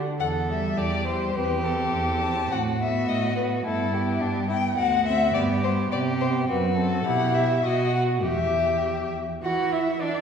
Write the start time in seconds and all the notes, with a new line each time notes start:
0.19 E2 A4 F#5
0.49 G3 E5
0.78 E2 G4 D5
1.07 G3 C5
1.35 E2 C4 G4 B4
1.64 C4 A4
1.93 E2
2.22 C4 A5
2.51 A2 F#4 F#5
2.81 B3 E5
3.09 A2 D#5
3.36 B3 B4
3.65 G2 B3 E4 A4
3.94 B3 G4
4.21 G2 D4
4.49 B3 E4 G5
4.78 D2 F#4 F#5
5.07 C4 E5
5.34 G2 B3 G4 D5
5.64 B3 C5
5.91 C3 G4 D5
6.21 B3 C5
6.48 F#2 C4 F#4 B4
6.77 C4 A4
7.04 B2 E4 G4 F#5
7.34 E5
7.65 B2 F#4 D#5
7.95 F#5
8.23 E2 G4 E5
9.43 E3 F#4 F#5
9.72 E4 E5
10.00 E3 D4 D5